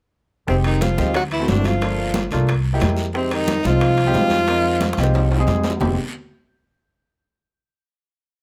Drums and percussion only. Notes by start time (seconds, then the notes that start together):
0.48 high bongo, high conga, long guiro
0.64 high bongo, high conga, high timbale
0.81 high bongo, high conga, high timbale, low timbale, short guiro
0.98 high conga, short guiro
1.14 high bongo, high timbale, long guiro
1.31 high conga, high timbale
1.48 high bongo, low bongo, high conga, low timbale, short guiro
1.64 high bongo, high conga, high timbale, short guiro
1.81 high bongo, high conga, high timbale, long guiro
1.99 high bongo
2.14 high bongo, high conga, high timbale, low timbale, short guiro
2.31 high bongo, high timbale, short guiro
2.47 high bongo, high conga, high timbale, long guiro
2.65 high conga
2.80 high bongo, low bongo, high conga, high timbale, low timbale, short guiro
2.96 high bongo, short guiro
3.13 high bongo, high conga, long guiro
3.31 high bongo, high conga, high timbale
3.46 high bongo, high conga, high timbale, low timbale, short guiro
3.63 high bongo, high conga, short guiro
3.80 high bongo, high conga, high timbale, long guiro
3.98 high conga, high timbale
4.14 high bongo, low bongo, high conga, low timbale, short guiro
4.30 high bongo, high conga, high timbale, short guiro
4.47 high bongo, high conga, high timbale, long guiro
4.63 high bongo, high conga
4.81 high bongo, high conga, high timbale, low timbale, short guiro
4.93 high bongo
4.97 high conga, high timbale, short guiro
5.04 high bongo
5.13 low bongo, high conga, high timbale, long guiro
5.30 high conga, high timbale
5.37 low bongo
5.47 low bongo, high conga, low timbale, short guiro
5.64 low timbale, short guiro
5.70 low bongo
5.80 low bongo, low conga, low timbale, long guiro